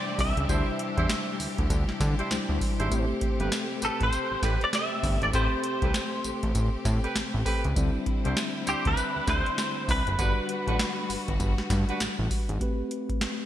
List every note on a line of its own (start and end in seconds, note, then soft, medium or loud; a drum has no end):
0.00 7.72 C3 medium
0.00 2.87 E3 medium
0.00 0.45 G3 medium
0.00 0.45 D4 medium
0.00 2.87 D4 medium
0.00 0.46 E4 medium
0.00 7.72 G4 medium
0.00 0.46 C5 medium
0.00 0.20 D5 medium
0.19 0.33 C2 loud
0.19 1.97 E5 loud
0.19 kick loud
0.19 open hi-hat medium
0.19 tambourine medium
0.37 0.46 C#2 loud
0.37 closed hi-hat medium
0.48 0.64 D2 loud
0.48 2.27 G3 medium
0.48 0.67 D4 medium
0.48 2.27 D4 medium
0.48 0.67 E4 medium
0.48 2.27 E4 medium
0.48 0.68 G4 medium
0.48 0.68 C5 medium
0.48 2.28 C5 medium
0.48 kick loud
0.48 closed hi-hat medium
0.48 tambourine medium
0.79 closed hi-hat medium
0.97 1.07 E2 loud
0.97 1.10 D4 medium
0.97 1.10 E4 medium
0.97 1.10 G4 medium
0.97 1.10 C5 medium
0.97 kick medium
0.97 closed hi-hat medium
1.10 snare loud
1.10 clap loud
1.10 closed hi-hat medium
1.10 tambourine medium
1.40 1.47 D2 soft
1.40 open hi-hat medium
1.40 tambourine medium
1.58 1.68 D2 medium
1.58 kick medium
1.58 closed hi-hat medium
1.70 1.85 D2 loud
1.70 kick loud
1.70 closed hi-hat medium
1.70 tambourine medium
1.89 snare medium
2.00 2.15 D3 loud
2.00 kick loud
2.00 snare medium
2.00 closed hi-hat medium
2.00 tambourine medium
2.18 2.31 D4 medium
2.18 2.31 E4 medium
2.18 2.31 G4 medium
2.18 2.31 C5 medium
2.18 closed hi-hat soft
2.30 2.38 D2 soft
2.30 2.91 G3 medium
2.30 2.91 D4 medium
2.30 2.91 E4 medium
2.30 2.92 C5 medium
2.30 snare loud
2.30 clap medium
2.30 closed hi-hat medium
2.30 tambourine loud
2.49 2.59 D2 medium
2.61 kick loud
2.61 open hi-hat medium
2.61 tambourine medium
2.79 2.89 G#1 loud
2.79 2.92 D4 medium
2.79 2.92 E4 medium
2.79 2.92 G4 medium
2.79 2.92 C5 medium
2.79 closed hi-hat medium
2.90 3.06 A1 loud
2.90 5.29 A3 medium
2.90 7.72 A3 medium
2.90 5.30 C4 medium
2.90 7.72 C4 medium
2.90 5.30 G4 medium
2.90 3.00 A4 medium
2.90 kick loud
2.90 closed hi-hat medium
2.90 tambourine medium
2.99 5.34 C5 medium
3.21 kick medium
3.21 closed hi-hat medium
3.40 3.50 G1 medium
3.40 3.52 C4 medium
3.40 3.52 G4 medium
3.40 3.52 A4 medium
3.40 3.53 B4 medium
3.40 closed hi-hat medium
3.52 snare loud
3.52 clap medium
3.52 closed hi-hat medium
3.52 tambourine medium
3.82 3.90 A1 soft
3.82 4.01 C4 medium
3.82 4.01 G4 medium
3.82 4.01 A4 medium
3.82 4.01 B4 medium
3.82 closed hi-hat medium
3.82 tambourine medium
4.01 4.10 A1 medium
4.01 4.43 C5 loud
4.01 kick medium
4.01 closed hi-hat medium
4.13 closed hi-hat medium
4.13 tambourine medium
4.31 4.36 A1 soft
4.42 4.57 A1 medium
4.42 4.61 C4 medium
4.42 4.62 G4 medium
4.42 4.62 A4 medium
4.42 4.62 B4 medium
4.42 4.59 B4 loud
4.42 kick loud
4.42 snare medium
4.42 closed hi-hat medium
4.42 tambourine medium
4.61 4.69 D5 loud
4.61 closed hi-hat soft
4.73 5.23 E5 loud
4.73 snare loud
4.73 clap medium
4.73 closed hi-hat medium
4.73 tambourine medium
5.03 5.18 G1 loud
5.03 kick loud
5.03 open hi-hat medium
5.03 tambourine medium
5.22 5.31 G#1 loud
5.22 5.28 D5 loud
5.22 closed hi-hat medium
5.33 5.48 A1 loud
5.33 7.72 A3 medium
5.33 5.52 C4 medium
5.33 7.72 C4 medium
5.33 5.52 G4 medium
5.33 7.73 G4 medium
5.33 5.53 A4 medium
5.33 5.53 B4 loud
5.33 7.43 C5 loud
5.33 7.73 C5 medium
5.33 kick loud
5.33 closed hi-hat medium
5.33 tambourine medium
5.64 closed hi-hat medium
5.82 5.92 C2 medium
5.82 5.95 C4 medium
5.82 5.95 G4 medium
5.82 5.95 A4 medium
5.82 5.95 B4 medium
5.82 kick medium
5.82 closed hi-hat medium
5.94 snare loud
5.94 clap loud
5.94 closed hi-hat medium
5.94 tambourine loud
6.24 6.32 A1 soft
6.24 closed hi-hat medium
6.24 tambourine medium
6.43 6.53 A1 medium
6.43 kick medium
6.43 closed hi-hat medium
6.55 6.69 A1 loud
6.55 kick loud
6.55 closed hi-hat medium
6.55 tambourine medium
6.85 7.00 A2 loud
6.85 kick loud
6.85 snare medium
6.85 closed hi-hat medium
6.85 tambourine medium
7.03 7.16 C4 medium
7.03 7.16 G4 medium
7.03 7.16 A4 medium
7.03 7.16 B4 medium
7.03 closed hi-hat soft
7.16 7.23 A1 medium
7.16 snare loud
7.16 clap medium
7.16 closed hi-hat medium
7.16 tambourine medium
7.34 7.43 A1 loud
7.45 7.64 C4 medium
7.45 7.64 G4 medium
7.45 7.65 A4 medium
7.45 7.65 B4 medium
7.45 kick medium
7.45 open hi-hat medium
7.45 tambourine medium
7.64 7.74 C#2 medium
7.64 closed hi-hat medium
7.76 7.91 D2 loud
7.76 12.57 D3 medium
7.76 10.14 G3 medium
7.76 12.57 G3 medium
7.76 10.16 C4 medium
7.76 10.15 D4 medium
7.76 10.16 E4 medium
7.76 10.15 E4 medium
7.76 kick loud
7.76 closed hi-hat medium
7.76 tambourine medium
8.06 kick medium
8.06 closed hi-hat medium
8.24 8.35 C2 loud
8.24 8.37 D4 medium
8.24 8.37 E4 medium
8.24 8.37 G4 medium
8.24 8.37 C5 medium
8.24 closed hi-hat medium
8.37 snare loud
8.37 clap loud
8.37 closed hi-hat medium
8.37 tambourine medium
8.67 8.75 D2 medium
8.67 8.86 D4 medium
8.67 8.86 E4 medium
8.67 8.86 G4 medium
8.67 8.87 G4 medium
8.67 8.86 C5 medium
8.67 closed hi-hat medium
8.67 tambourine medium
8.85 8.95 D2 loud
8.85 9.29 B4 loud
8.85 kick medium
8.85 closed hi-hat medium
8.97 closed hi-hat medium
8.97 tambourine medium
9.16 9.21 D2 soft
9.27 9.42 D2 loud
9.27 9.47 D4 medium
9.27 9.47 E4 medium
9.27 9.47 G4 medium
9.27 9.47 C5 medium
9.27 9.90 C5 loud
9.27 kick loud
9.27 snare medium
9.27 closed hi-hat medium
9.27 tambourine medium
9.46 closed hi-hat soft
9.58 snare loud
9.58 clap medium
9.58 closed hi-hat medium
9.58 tambourine medium
9.88 10.03 C2 loud
9.88 11.98 B4 loud
9.88 kick loud
9.88 open hi-hat medium
9.88 tambourine medium
10.07 10.16 F#1 medium
10.07 closed hi-hat medium
10.18 10.33 G1 loud
10.18 12.57 G3 medium
10.18 12.59 B3 medium
10.18 10.37 D4 medium
10.18 12.57 D4 medium
10.18 10.37 F#4 medium
10.18 12.59 F#4 medium
10.18 12.58 F#4 medium
10.18 10.37 G4 medium
10.18 10.38 B4 loud
10.18 12.58 B4 medium
10.18 kick loud
10.18 closed hi-hat medium
10.18 tambourine medium
10.49 closed hi-hat medium
10.67 10.77 A1 medium
10.67 10.80 D4 medium
10.67 10.80 F#4 medium
10.67 10.80 G4 medium
10.67 10.80 B4 medium
10.67 kick loud
10.67 closed hi-hat medium
10.79 snare loud
10.79 clap medium
10.79 closed hi-hat medium
10.79 tambourine medium
11.10 11.17 G1 soft
11.10 open hi-hat medium
11.10 tambourine medium
11.28 11.38 G1 medium
11.28 kick medium
11.28 closed hi-hat medium
11.40 11.54 G1 loud
11.40 kick loud
11.40 closed hi-hat medium
11.40 tambourine medium
11.58 snare medium
11.70 11.85 G2 loud
11.70 kick loud
11.70 snare medium
11.70 closed hi-hat medium
11.70 tambourine medium
11.88 12.01 D4 medium
11.88 12.01 F#4 medium
11.88 12.01 G4 medium
11.88 12.01 B4 medium
11.88 closed hi-hat medium
12.00 12.08 A1 soft
12.00 snare loud
12.00 clap medium
12.00 closed hi-hat medium
12.00 tambourine loud
12.19 12.28 A1 loud
12.31 kick loud
12.31 open hi-hat medium
12.31 tambourine medium
12.49 12.59 G#1 loud
12.49 closed hi-hat medium
12.60 13.46 A3 medium
12.60 13.46 C4 medium
12.60 13.46 G4 medium
12.60 13.46 B4 medium
12.60 kick medium
12.60 closed hi-hat medium
12.91 closed hi-hat medium
13.10 kick medium
13.10 closed hi-hat soft
13.21 snare loud
13.21 clap medium
13.21 closed hi-hat medium